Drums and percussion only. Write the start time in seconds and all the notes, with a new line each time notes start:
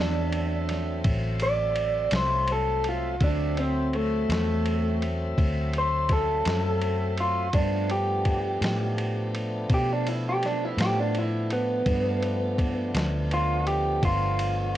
0.33 ride
0.69 snare, ride
1.04 kick, ride
1.40 ride
1.76 ride
2.11 snare, ride
2.48 ride
2.84 ride
3.21 kick, ride
3.57 ride
3.93 ride
4.30 snare, ride
4.65 ride
5.02 ride
5.38 kick, ride
5.73 ride
6.09 kick, snare, ride
6.45 snare, ride
6.82 ride
7.18 ride
7.53 kick, ride
7.90 ride
8.25 kick, ride
8.62 snare, ride
8.98 ride
9.35 ride
9.70 kick, ride
10.07 ride
10.43 snare, ride
10.78 snare, ride
11.15 ride
11.50 ride
11.86 kick, ride
12.23 ride
12.58 kick, ride
12.95 snare, ride
13.31 ride
13.67 ride
14.03 kick, ride
14.39 ride